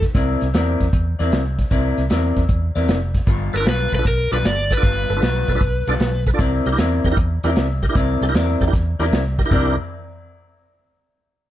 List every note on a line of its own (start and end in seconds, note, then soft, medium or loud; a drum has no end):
0.02 kick medium
0.02 snare soft
0.02 closed hi-hat medium
0.15 0.36 C2 medium
0.15 0.45 C4 medium
0.15 0.46 E4 medium
0.15 0.46 A#4 medium
0.15 0.46 D5 medium
0.15 kick loud
0.15 snare soft
0.15 closed hi-hat medium
0.41 0.52 C2 medium
0.41 snare soft
0.41 closed hi-hat medium
0.54 0.75 E2 medium
0.54 0.84 C4 medium
0.54 0.85 E4 medium
0.54 0.85 A#4 medium
0.54 0.85 D5 medium
0.54 snare loud
0.54 closed hi-hat medium
0.80 0.90 E2 medium
0.80 kick medium
0.80 snare soft
0.80 closed hi-hat medium
0.93 1.14 E2 medium
0.93 kick loud
0.93 closed hi-hat medium
1.19 1.30 E2 medium
1.19 1.41 C4 medium
1.19 1.41 E4 medium
1.19 1.40 A#4 medium
1.19 1.40 D5 loud
1.19 snare soft
1.19 closed hi-hat medium
1.32 1.63 C2 medium
1.32 snare loud
1.32 closed hi-hat medium
1.59 kick medium
1.59 snare soft
1.59 closed hi-hat medium
1.71 1.92 C2 medium
1.71 2.01 C4 medium
1.71 2.02 E4 medium
1.71 2.02 A#4 medium
1.71 2.02 D5 medium
1.71 kick loud
1.71 closed hi-hat medium
1.98 2.08 C2 medium
1.98 snare soft
1.98 closed hi-hat medium
2.10 2.31 E2 medium
2.10 2.40 C4 medium
2.10 2.41 E4 medium
2.10 2.41 A#4 medium
2.10 2.41 D5 medium
2.10 snare loud
2.10 closed hi-hat medium
2.36 2.46 E2 medium
2.36 kick medium
2.36 snare soft
2.36 closed hi-hat medium
2.49 2.70 E2 medium
2.49 kick loud
2.49 closed hi-hat medium
2.76 2.86 E2 medium
2.76 2.97 C4 medium
2.76 2.97 E4 medium
2.76 2.96 A#4 medium
2.76 2.96 D5 medium
2.76 snare soft
2.76 closed hi-hat medium
2.88 3.19 F1 medium
2.88 snare loud
2.88 closed hi-hat medium
3.15 kick medium
3.15 snare soft
3.15 closed hi-hat medium
3.27 3.48 G1 medium
3.27 3.57 G3 medium
3.27 3.58 B3 medium
3.27 3.58 F4 medium
3.27 3.58 A4 medium
3.27 kick loud
3.27 closed hi-hat medium
3.53 3.64 G1 medium
3.53 3.57 A4 medium
3.53 3.57 B4 medium
3.53 snare soft
3.53 closed hi-hat medium
3.57 3.66 D4 medium
3.57 3.66 F4 medium
3.57 3.66 A4 medium
3.57 3.69 A#4 medium
3.57 3.66 B4 medium
3.66 3.87 B1 medium
3.66 3.96 G3 medium
3.66 3.97 B3 medium
3.66 3.97 F4 medium
3.66 3.97 A4 medium
3.66 3.94 B4 medium
3.66 snare loud
3.66 closed hi-hat medium
3.92 4.02 B1 medium
3.92 3.96 A4 medium
3.92 3.96 B4 medium
3.92 4.07 B4 medium
3.92 kick medium
3.92 snare soft
3.92 closed hi-hat medium
3.99 4.05 D4 medium
3.99 4.05 F4 medium
3.99 4.05 A4 medium
3.99 4.05 B4 medium
4.05 4.26 B1 medium
4.05 4.33 A#4 medium
4.05 kick loud
4.05 closed hi-hat medium
4.31 4.42 B1 medium
4.31 4.53 G3 medium
4.31 4.53 B3 medium
4.31 4.38 D4 medium
4.31 4.38 F4 medium
4.31 4.53 F4 medium
4.31 4.52 A4 medium
4.31 4.38 A4 medium
4.31 4.45 B4 medium
4.31 4.38 D5 medium
4.31 snare soft
4.31 closed hi-hat medium
4.44 4.75 G1 medium
4.44 4.72 D5 loud
4.44 snare loud
4.44 closed hi-hat medium
4.70 4.74 A4 medium
4.70 6.24 B4 medium
4.70 4.74 D5 medium
4.70 kick medium
4.70 snare soft
4.70 closed hi-hat medium
4.77 4.83 D4 medium
4.77 4.83 F4 medium
4.77 4.83 A4 medium
4.77 4.83 D5 medium
4.83 5.04 G1 medium
4.83 5.14 G3 medium
4.83 5.14 B3 medium
4.83 5.14 F4 medium
4.83 5.14 A4 medium
4.83 kick loud
4.83 closed hi-hat medium
5.09 5.20 G1 medium
5.09 5.13 A4 medium
5.09 5.13 B4 medium
5.09 snare soft
5.09 closed hi-hat medium
5.16 5.23 D4 medium
5.16 5.23 F4 medium
5.16 5.23 A4 medium
5.16 5.23 B4 medium
5.22 5.43 B1 medium
5.22 5.53 G3 medium
5.22 5.53 B3 medium
5.22 5.53 F4 medium
5.22 5.53 A4 medium
5.22 snare loud
5.22 closed hi-hat medium
5.48 5.58 B1 medium
5.48 5.52 A4 medium
5.48 5.52 B4 loud
5.48 kick medium
5.48 snare soft
5.48 closed hi-hat medium
5.55 5.61 D4 medium
5.55 5.62 F4 medium
5.55 5.62 A4 medium
5.55 5.62 B4 medium
5.61 5.82 B1 medium
5.61 kick loud
5.61 closed hi-hat medium
5.87 5.97 B1 medium
5.87 6.09 G3 medium
5.87 6.09 B3 medium
5.87 5.95 D4 medium
5.87 6.08 F4 medium
5.87 5.95 F4 medium
5.87 6.08 A4 medium
5.87 5.95 A4 medium
5.87 5.95 D5 medium
5.87 snare soft
5.87 closed hi-hat medium
6.00 6.31 B1 medium
6.00 snare loud
6.00 closed hi-hat medium
6.27 6.30 A4 medium
6.27 6.30 B4 medium
6.27 kick medium
6.27 snare soft
6.27 closed hi-hat medium
6.34 6.40 D4 medium
6.34 6.40 F4 medium
6.34 6.40 A4 medium
6.34 6.40 D5 medium
6.39 6.60 C2 medium
6.39 6.70 C4 medium
6.39 6.70 E4 medium
6.39 6.70 A#4 medium
6.39 6.70 D5 loud
6.39 kick loud
6.39 closed hi-hat medium
6.66 6.76 C2 medium
6.66 6.69 G4 medium
6.66 6.70 A#4 medium
6.66 snare soft
6.66 closed hi-hat medium
6.72 6.79 D4 medium
6.72 6.79 E4 medium
6.72 6.79 G4 medium
6.72 6.79 A#4 medium
6.78 6.99 E2 medium
6.78 7.09 C4 medium
6.78 7.09 E4 medium
6.78 7.09 A#4 medium
6.78 7.09 D5 medium
6.78 snare loud
6.78 closed hi-hat medium
7.04 7.14 E2 medium
7.04 7.08 G4 medium
7.04 7.09 A#4 loud
7.04 kick medium
7.04 snare soft
7.04 closed hi-hat medium
7.11 7.18 D4 medium
7.11 7.18 E4 medium
7.11 7.18 G4 medium
7.11 7.18 A#4 medium
7.17 7.38 E2 medium
7.17 kick loud
7.17 closed hi-hat medium
7.43 7.54 E2 medium
7.43 7.65 C4 medium
7.43 7.50 D4 medium
7.43 7.50 E4 medium
7.43 7.65 E4 medium
7.43 7.50 G4 medium
7.43 7.50 A#4 medium
7.43 7.65 A#4 medium
7.43 7.64 D5 medium
7.43 snare soft
7.43 closed hi-hat medium
7.56 7.87 C2 medium
7.56 snare loud
7.56 closed hi-hat medium
7.83 7.86 G4 medium
7.83 7.86 A#4 medium
7.83 kick medium
7.83 snare soft
7.83 closed hi-hat medium
7.89 7.95 D4 medium
7.89 7.96 E4 medium
7.89 7.95 G4 medium
7.89 7.96 A#4 medium
7.95 8.16 C2 medium
7.95 8.26 C4 medium
7.95 8.26 E4 medium
7.95 8.26 A#4 medium
7.95 8.26 D5 medium
7.95 kick loud
7.95 closed hi-hat medium
8.21 8.31 C2 medium
8.21 8.25 G4 medium
8.21 8.25 A4 medium
8.21 snare soft
8.21 closed hi-hat medium
8.28 8.35 D4 medium
8.28 8.35 E4 medium
8.28 8.35 G4 medium
8.28 8.35 A#4 medium
8.34 8.55 E2 medium
8.34 8.65 C4 medium
8.34 8.65 E4 medium
8.34 8.65 A#4 medium
8.34 8.65 D5 medium
8.34 snare loud
8.34 closed hi-hat medium
8.61 8.70 E2 medium
8.61 8.64 G4 medium
8.61 8.64 A4 medium
8.61 kick medium
8.61 snare soft
8.61 closed hi-hat medium
8.67 8.73 D4 medium
8.67 8.73 E4 medium
8.67 8.74 G4 medium
8.67 8.74 A#4 medium
8.73 8.94 E2 medium
8.73 kick loud
8.73 snare soft
8.73 closed hi-hat medium
8.99 9.09 E2 medium
8.99 9.21 C4 medium
8.99 9.06 D4 medium
8.99 9.06 E4 medium
8.99 9.21 E4 medium
8.99 9.06 G4 medium
8.99 9.06 A#4 medium
8.99 9.20 A#4 medium
8.99 9.20 D5 medium
8.99 snare soft
8.99 closed hi-hat medium
9.12 9.42 C2 medium
9.12 snare loud
9.12 closed hi-hat medium
9.39 9.42 G4 medium
9.39 9.42 A#4 medium
9.39 kick medium
9.39 snare soft
9.39 closed hi-hat medium
9.45 9.50 D4 medium
9.45 9.50 E4 medium
9.45 9.50 G4 medium
9.45 9.51 A#4 medium
9.51 9.76 C2 medium
9.51 9.72 C4 medium
9.51 9.76 D4 medium
9.51 9.72 E4 medium
9.51 9.76 E4 medium
9.51 9.76 G4 medium
9.51 9.76 A#4 medium
9.51 9.73 A#4 medium
9.51 9.73 D5 loud
9.51 kick loud
9.51 floor tom loud